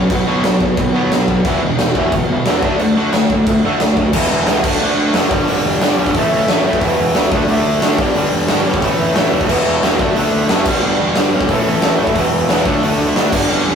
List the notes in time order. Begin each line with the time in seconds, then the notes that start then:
Already playing: C#4 C#5
0.10 B1 B2 F#3 B3 B4, kick, crash
0.26 B1 B2 F#3 B3
0.44 B1 B2 F#3, snare, crash
0.60 B1 B2 F#3, kick
0.77 B1 B2 F#3, kick, crash
0.94 B1 B2 F#3 B3
1.12 B1 B2 F#3, snare, crash
1.28 B1 B2 F#3 B3 B4, kick
1.45 E1 E2 B2 E3, kick, crash
1.62 E1 E2 B2 D#4 D#5
1.78 E1 E2 B2, snare, crash
1.95 E1 E2 B2 E3 E4, kick
2.11 E1 E2 B2 F#3 F#4, kick, crash
2.29 E1 E2 B2 E3 E4
2.45 E1 E2 B2 E3, snare, crash
2.56 C#4 C#5
2.62 D2 D3 A3 D4 D5, kick
2.79 D2 D3 A3, crash
2.96 D2 D3 A3 D4
3.13 D2 D3 A3, snare, crash
3.30 D2 D3 A3, kick
3.47 D2 D3 A3, kick, crash
3.63 D2 D3 A3 D4
3.80 D2 D3 A3, snare, crash
3.96 D2 D3 A3, kick
4.13 E1 E2 B2 E3, kick, crash
4.31 E1
4.46 C#2 E2 B2 E3 B3 B4, snare, open hi-hat
4.64 D2 D3 A3 D4 A4, kick, crash
4.80 D2 D3 A3 D4
4.97 D2
5.14 F#1 D3 A3 C#4 D4 C#5, snare, open hi-hat
5.31 G1 G2 D3 G3 D4 D5, kick
5.47 G1 G2 D3 G3, open hi-hat
5.64 E1 D4 D5
5.80 G1 G2 D3 G3, snare, open hi-hat
5.97 B1 G2 D3 G3 C#4 C#5
6.06 kick
6.15 A1 A2 E3 A3, kick, open hi-hat
6.31 A1
6.48 A1 A2 E3 A3, snare, open hi-hat
6.64 A2 E3 A3
6.68 A2
6.73 kick
6.81 E1 E2 B2 E3, kick, open hi-hat
6.99 E1
7.15 C#2 E2 B2 E3 B3, snare, open hi-hat
7.19 B4
7.31 D2 D3 A3 D4, kick
7.35 A4
7.48 D2 D3 A3 D4, open hi-hat
7.66 D2
7.82 D2 D3 A3 C#4 D4 C#5, snare, open hi-hat
7.98 G1 G2 D3 G3 D4 D5, kick
8.15 G1 G2 D3 G3, open hi-hat
8.32 E1 D4 D5
8.48 G1 G2 D3 G3, snare, open hi-hat
8.65 G1 G2 D3 G3 C#4 C#5
8.74 kick
8.82 A1 A2 E3 A3, kick, open hi-hat
8.99 A1
9.15 A1 A2 E3 A3, snare, open hi-hat
9.33 D#2 A2 E3 A3
9.41 kick
9.49 E1 E2 B2 E3, kick, crash
9.66 E1
9.82 E2 B2 E3 B3 B4, snare, open hi-hat
9.99 D2 D3 A3 D4 A4, kick
10.16 D2 D3 A3 D4, open hi-hat
10.33 D2
10.49 F#1 D3 A3 C#4 D4 C#5, snare, open hi-hat
10.65 G1 G2 D3 G3 D4 D5, kick, crash
10.82 G1 G2 D3 G3
11.00 E1 D4 D5
11.15 G1 G2 D3 G3, snare, open hi-hat
11.33 G1 G2 D3 G3 C#4 C#5
11.41 kick
11.49 A1 A2 E3 A3, kick, open hi-hat
11.66 A1
11.82 A1 A2 E3 A3, snare, open hi-hat
11.98 A2 E3 A3
12.07 kick
12.15 E1 E2 B2 E3, kick, open hi-hat
12.32 E1
12.49 E1 E2 B2 E3 B3 B4, snare, open hi-hat
12.65 D2 D3 A3 D4 A4, kick
12.82 D2 D3 A3 D4, open hi-hat
12.99 D2
13.16 D2 D3 A3 D4, snare, open hi-hat
13.32 G1 G2 D3 G3 D4 D5, kick, crash
13.50 G1 G2 D3 G3 C#4 C#5
13.67 E1